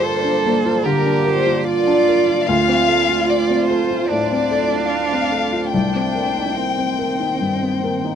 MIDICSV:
0, 0, Header, 1, 5, 480
1, 0, Start_track
1, 0, Key_signature, -2, "minor"
1, 0, Tempo, 809717
1, 1467, Time_signature, 4, 2, 24, 8
1, 2906, Tempo, 833333
1, 4777, End_track
2, 0, Start_track
2, 0, Title_t, "Violin section"
2, 0, Program_c, 0, 48
2, 0, Note_on_c, 0, 72, 67
2, 506, Note_off_c, 0, 72, 0
2, 506, Note_on_c, 0, 70, 62
2, 748, Note_off_c, 0, 70, 0
2, 749, Note_on_c, 0, 72, 71
2, 989, Note_off_c, 0, 72, 0
2, 992, Note_on_c, 0, 74, 80
2, 1459, Note_off_c, 0, 74, 0
2, 1464, Note_on_c, 0, 77, 86
2, 1945, Note_off_c, 0, 77, 0
2, 1946, Note_on_c, 0, 74, 69
2, 2183, Note_on_c, 0, 72, 58
2, 2185, Note_off_c, 0, 74, 0
2, 2418, Note_off_c, 0, 72, 0
2, 2425, Note_on_c, 0, 74, 63
2, 2905, Note_on_c, 0, 77, 65
2, 2907, Note_off_c, 0, 74, 0
2, 3382, Note_off_c, 0, 77, 0
2, 3382, Note_on_c, 0, 79, 54
2, 4777, Note_off_c, 0, 79, 0
2, 4777, End_track
3, 0, Start_track
3, 0, Title_t, "Ambient pad"
3, 0, Program_c, 1, 92
3, 0, Note_on_c, 1, 58, 64
3, 0, Note_on_c, 1, 65, 66
3, 0, Note_on_c, 1, 74, 61
3, 1446, Note_off_c, 1, 74, 0
3, 1447, Note_off_c, 1, 58, 0
3, 1447, Note_off_c, 1, 65, 0
3, 1466, Note_on_c, 1, 57, 64
3, 1466, Note_on_c, 1, 72, 66
3, 1468, Note_on_c, 1, 65, 61
3, 3361, Note_off_c, 1, 65, 0
3, 3380, Note_off_c, 1, 72, 0
3, 3382, Note_on_c, 1, 58, 57
3, 3383, Note_off_c, 1, 57, 0
3, 3383, Note_on_c, 1, 51, 56
3, 3387, Note_on_c, 1, 72, 51
3, 4777, Note_off_c, 1, 51, 0
3, 4777, Note_off_c, 1, 58, 0
3, 4777, Note_off_c, 1, 72, 0
3, 4777, End_track
4, 0, Start_track
4, 0, Title_t, "Cello"
4, 0, Program_c, 2, 42
4, 16, Note_on_c, 2, 69, 93
4, 506, Note_on_c, 2, 67, 91
4, 515, Note_off_c, 2, 69, 0
4, 976, Note_on_c, 2, 65, 102
4, 985, Note_off_c, 2, 67, 0
4, 1455, Note_off_c, 2, 65, 0
4, 1459, Note_on_c, 2, 65, 92
4, 2426, Note_on_c, 2, 62, 88
4, 2435, Note_off_c, 2, 65, 0
4, 3384, Note_off_c, 2, 62, 0
4, 3386, Note_on_c, 2, 62, 66
4, 3865, Note_on_c, 2, 60, 48
4, 3874, Note_off_c, 2, 62, 0
4, 4777, Note_off_c, 2, 60, 0
4, 4777, End_track
5, 0, Start_track
5, 0, Title_t, "Felt piano"
5, 0, Program_c, 3, 0
5, 0, Control_c, 3, 64, 127
5, 0, Note_on_c, 3, 43, 62
5, 0, Note_on_c, 3, 62, 51
5, 0, Note_on_c, 3, 65, 54
5, 0, Note_on_c, 3, 70, 53
5, 145, Note_off_c, 3, 62, 0
5, 145, Note_on_c, 3, 62, 45
5, 267, Note_on_c, 3, 58, 52
5, 291, Note_off_c, 3, 65, 0
5, 340, Note_off_c, 3, 62, 0
5, 387, Note_on_c, 3, 65, 54
5, 461, Note_off_c, 3, 58, 0
5, 486, Note_off_c, 3, 43, 0
5, 508, Note_on_c, 3, 50, 57
5, 580, Note_off_c, 3, 65, 0
5, 629, Note_on_c, 3, 62, 53
5, 701, Note_off_c, 3, 50, 0
5, 746, Note_off_c, 3, 70, 0
5, 746, Note_on_c, 3, 70, 56
5, 821, Note_off_c, 3, 62, 0
5, 866, Note_on_c, 3, 65, 52
5, 940, Note_off_c, 3, 70, 0
5, 1110, Note_on_c, 3, 62, 52
5, 1233, Note_on_c, 3, 70, 53
5, 1251, Note_off_c, 3, 65, 0
5, 1301, Note_off_c, 3, 62, 0
5, 1349, Note_on_c, 3, 65, 52
5, 1422, Note_off_c, 3, 70, 0
5, 1468, Note_off_c, 3, 65, 0
5, 1473, Note_on_c, 3, 38, 66
5, 1477, Control_c, 3, 64, 0
5, 1577, Control_c, 3, 64, 127
5, 1587, Note_on_c, 3, 60, 51
5, 1710, Note_on_c, 3, 69, 50
5, 1778, Note_off_c, 3, 60, 0
5, 1831, Note_on_c, 3, 65, 49
5, 1900, Note_off_c, 3, 69, 0
5, 2070, Note_on_c, 3, 60, 47
5, 2193, Note_on_c, 3, 69, 51
5, 2212, Note_off_c, 3, 65, 0
5, 2259, Note_off_c, 3, 60, 0
5, 2315, Note_on_c, 3, 65, 49
5, 2380, Note_off_c, 3, 69, 0
5, 2404, Note_off_c, 3, 38, 0
5, 2436, Note_on_c, 3, 45, 48
5, 2501, Note_off_c, 3, 65, 0
5, 2558, Note_on_c, 3, 60, 43
5, 2622, Note_off_c, 3, 45, 0
5, 2674, Note_on_c, 3, 69, 42
5, 2744, Note_off_c, 3, 60, 0
5, 2793, Note_on_c, 3, 65, 44
5, 2863, Note_off_c, 3, 69, 0
5, 3034, Note_on_c, 3, 60, 40
5, 3146, Note_on_c, 3, 69, 35
5, 3171, Note_off_c, 3, 65, 0
5, 3220, Note_off_c, 3, 60, 0
5, 3265, Note_on_c, 3, 65, 38
5, 3336, Note_off_c, 3, 69, 0
5, 3384, Note_off_c, 3, 65, 0
5, 3387, Note_on_c, 3, 36, 48
5, 3393, Control_c, 3, 64, 0
5, 3485, Control_c, 3, 64, 127
5, 3508, Note_on_c, 3, 60, 33
5, 3626, Note_on_c, 3, 70, 35
5, 3697, Note_off_c, 3, 60, 0
5, 3747, Note_on_c, 3, 63, 34
5, 3816, Note_off_c, 3, 70, 0
5, 3987, Note_on_c, 3, 60, 32
5, 4107, Note_on_c, 3, 70, 37
5, 4130, Note_off_c, 3, 63, 0
5, 4178, Note_off_c, 3, 60, 0
5, 4227, Note_on_c, 3, 63, 34
5, 4299, Note_off_c, 3, 70, 0
5, 4325, Note_off_c, 3, 36, 0
5, 4349, Note_on_c, 3, 43, 34
5, 4419, Note_off_c, 3, 63, 0
5, 4474, Note_on_c, 3, 60, 33
5, 4540, Note_off_c, 3, 43, 0
5, 4596, Note_on_c, 3, 70, 35
5, 4663, Note_off_c, 3, 60, 0
5, 4715, Note_on_c, 3, 63, 35
5, 4777, Note_off_c, 3, 63, 0
5, 4777, Note_off_c, 3, 70, 0
5, 4777, End_track
0, 0, End_of_file